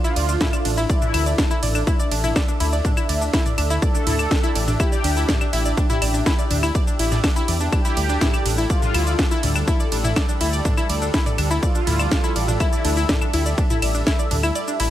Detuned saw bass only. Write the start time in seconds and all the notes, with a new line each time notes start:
0.16 D2
0.65 A1
1.14 D2
1.63 A1
2.12 A1
2.60 D2
3.09 D2
3.58 D2
4.07 D2
4.55 A1
5.04 D2
5.53 A1
6.02 A1
6.51 D2
6.99 A1
7.48 E2
7.97 D2
8.46 A1
8.95 D2
9.43 D2
9.92 A1
10.41 D2
10.90 D2
11.38 D2
11.87 D2
12.36 A1
12.85 D2
13.34 D2
13.82 A1
14.31 D2
14.80 A1